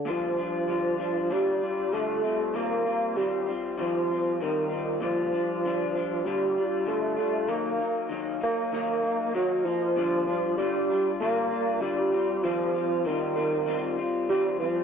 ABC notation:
X:1
M:4/4
L:1/8
Q:"Swing 16ths" 1/4=97
K:Bb
V:1 name="Clean electric guitar"
[B,,D,G,DF] [G,DF] [D,G,DF] [G,DF] [B,,D,G,DF] [G,DF] [D,G,DF] [G,CF] | [E,G,CF] [G,CF] [E,G,CF] [G,CF] [E,G,CF] [G,CF] [E,G,CF] [G,CF] | [B,,D,G,DF] [G,DF] [D,G,DF] [G,DF] [B,,D,G,DF] [G,DF] [D,G,DF] [G,DF] | [E,_G,B,E] [G,B,E] [E,G,B,E] [G,B,E] [E,G,B,E] [G,B,E] [E,G,B,E] [B,E] |
[B,,D,G,DF] [G,DF] [D,G,DF] [G,DF] [B,,D,G,DF] [G,DF] [D,G,DF] [G,CF] | [E,G,CF] [G,CF] [E,G,CF] [G,CF] [E,G,CF] [G,CF] [E,G,CF] [G,CF] |]
V:2 name="Bassoon" clef=bass
F,4 G,2 A,2 | B,2 G, z F,2 E,2 | F,4 G,2 A,2 | B,2 z B,3 _G, F,- |
F,2 G,2 B,2 G,2 | F,2 E,3 z G, F, |]